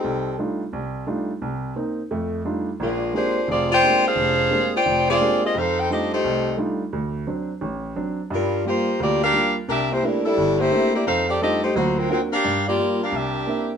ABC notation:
X:1
M:4/4
L:1/8
Q:"Swing" 1/4=174
K:F
V:1 name="Saxophone section"
[G,C_EA]2 z6 | z8 | [_A,DFB]2 [A,DFc]2 [CF_Ad] [Fcdg]2 [DAcf]- | [D_Acf]3 [Fcdg]2 [CFAd]2 [CFA_e] |
[_EAcf] [EAcg] [CGA_e] [A,EGc]3 z2 | z8 | [G,DFB]2 [B,FGc]2 [B,FGd] [DGBf]2 z | [DGBe] [B,EGc] [G,DEB] [G,DEA]2 [B,EGc]2 [B,EGd] |
[_EAcf] [CGAd] [CGA_e] [A,EGc] [^A,^E^Fc] [^F,CE^A] [F,CEA] [DGA^e]- | [DG^A^e] [B,FGd]2 [DGBf] [DGB=e]3 z |]
V:2 name="Grand piano"
C,,2 [G,A,D_EF] z C,,2 [G,A,DEF] z | C,,2 [B,C_E] z [F,,A,]2 [G,A,DEF] z | B,,,2 [_A,B,CDG] z F,,,2 [A,B,CDG] z | F,,,2 [_A,B,CDG] z F,,,2 [A,B,CDG] z |
F,,2 [G,A,D_EF] z C,,2 [G,A,DEF] z | D,,2 [^F,CD] z A,,,2 [F,CD] z | [G,,G,]2 [G,B,F] z D,,2 [G,B,F] z | C,,2 [A,B,CDE] z G,,,2 [A,B,CDE] z |
F,,2 [G,A,D_EF] z [D,,^F,]2 [^A,CD^F] z | G,,2 [G,B,F] z C,,2 [B,CDE] z |]